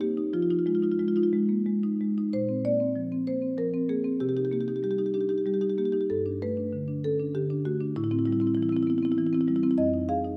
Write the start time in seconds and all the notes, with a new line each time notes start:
Already playing: C3 D#4
0.01 A#3 G4
0.17 D#4
0.33 F3 F4
0.42 F4
0.50 D#4 F4
0.59 F4
0.66 G#3 F4
0.75 F4
0.82 D#4 F4
0.92 F4
0.99 G#3 F4
1.08 F4
1.16 D#4 F4
1.23 F4
1.33 G#3
1.49 A#3
1.66 G#3
1.83 D#4
2.01 G#3
2.18 D#4
2.33 A#2 C5
2.49 C4
2.65 A#3 D5
2.80 C4
2.96 F3
3.12 C4
3.27 A#3 C5
3.42 C4
3.58 F3 A#4
3.74 C4
3.89 A#3 G#4
4.04 C4
4.20 C3 G4
4.29 G4
4.37 D#4 G4
4.45 G4
4.52 A#3 G4
4.61 G4
4.68 D#4 G4
4.76 G4
4.83 G3 G4
4.91 G4
4.98 D#4 G4
5.06 G4
5.14 D4 G4
5.21 G4
5.29 D#4 G4
5.38 G4
5.46 G3 G4
5.54 G4
5.61 D#4 G4
5.70 G4
5.78 A#3 G4
5.85 G4
5.92 D#4 G4
6.01 G4
6.10 G2 A4
6.26 D4
6.42 A3 B4
6.57 D4
6.73 D3
6.88 D4
7.04 C#4 A4
7.20 D4
7.34 D3 G4
7.50 D4
7.65 A3 F#4
7.80 D4
7.96 A2 E4
8.04 E4
8.11 C4 E4
8.19 E4
8.26 G3 E4
8.32 E4
8.40 C4 E4
8.47 E4
8.55 E3 E4
8.62 E4
8.69 C4 E4
8.77 E4
8.83 E4
8.87 B3 E4
8.98 E4
9.03 C4 E4
9.12 E4
9.18 E3 E4
9.26 E4
9.33 C4 E4
9.41 E4
9.48 G3 E4
9.56 E4
9.63 C4 E4
9.71 E4
9.78 F2 D#5
9.94 D#4
10.09 G#4 F5
10.25 D#4